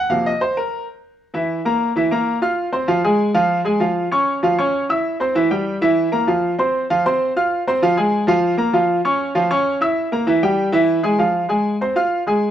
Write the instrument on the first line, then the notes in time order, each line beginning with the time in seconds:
grand piano
0.09 C3 F3 A#3 F5
0.26 D#5
0.41 C5
0.57 A#4
1.34 E3 E4 E5
1.65 A#3 A#4 A#5
1.96 E3 E4 E5
2.11 A#3 A#4 A#5
2.42 F4 F5 F6
2.72 C4 C5 C6
2.88 F3 F4 F5
3.04 G#3 G#4 G#5
3.34 F3 F4 F5
3.65 G#3 G#4 G#5
3.80 F3 F4 F5
4.12 C#4 C#5 C#6
4.43 F3 F4 F5
4.58 C#4 C#5 C#6
4.89 E4 E5 E6
5.20 C4 C5 C6
5.35 E3 E4 E5
5.51 G3 G4 G5
5.81 E3 E4 E5
6.12 A#3 A#4 A#5
6.27 F3 F4 F5
6.59 C4 C5 C6
6.90 F3 F4 F5
7.06 C4 C5 C6
7.36 F4 F5 F6
7.67 C4 C5 C6
7.82 F3 F4 F5
7.97 G#3 G#4 G#5
8.27 F3 F4 F5
8.57 A#3 A#4 A#5
8.73 F3 F4 F5
9.05 C#4 C#5 C#6
9.35 F3 F4 F5
9.51 C#4 C#5 C#6
9.81 E4 E5 E6
10.12 A#3 A#4 A#5
10.27 E3 E4 E5
10.43 G3 G4 G5
10.72 E3 E4 E5
11.03 G#3 G#4 G#5
11.18 F3 F4 F5
11.49 G#3 G#4 G#5
11.81 C4 C5 C6
11.96 F4 F5 F6
12.27 G#3 G#4 G#5